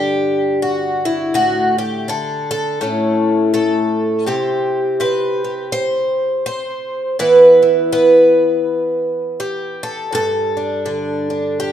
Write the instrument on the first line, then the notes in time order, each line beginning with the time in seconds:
twelve-string acoustic guitar
Already playing: G2 D3 D4 G4
0.62 F#4
1.05 E4
1.34 A2 F#4
1.78 G4
2.08 D3 A4
2.51 A4
2.81 A2 A3 C#4 E4
3.54 A3 A4
4.26 C3 C4 E4 G4
5.00 C4 B4
5.44 G4
5.72 C5
6.46 C5
7.19 E3 B3 E4 B4
7.62 E4
7.92 B3 B4
9.40 G4
9.83 A4
10.12 G2 A4
10.57 D4
10.86 D3
11.30 D4
11.60 G4